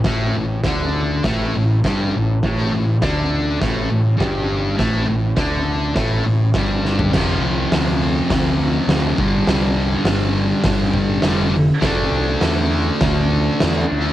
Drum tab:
CC |----------------|----------------|----------------|x---------------|
HH |o---o---o---o---|o---o---o---o---|o---o---o---o---|----o---o---o---|
SD |o---o---o---o---|o---o---o---o---|o---o---o---o-o-|o---o---o---o---|
FT |----------------|----------------|---------------o|----------------|
BD |o---o---o---o---|o---o---o---o---|o---o---o---o---|o-------o-----o-|

CC |----------------|----------------|
HH |o---o---o---o---|o---o---o---o---|
SD |o---o---o---o---|o---o---o---o---|
FT |----------------|----------------|
BD |--------o-o-----|o-------o-------|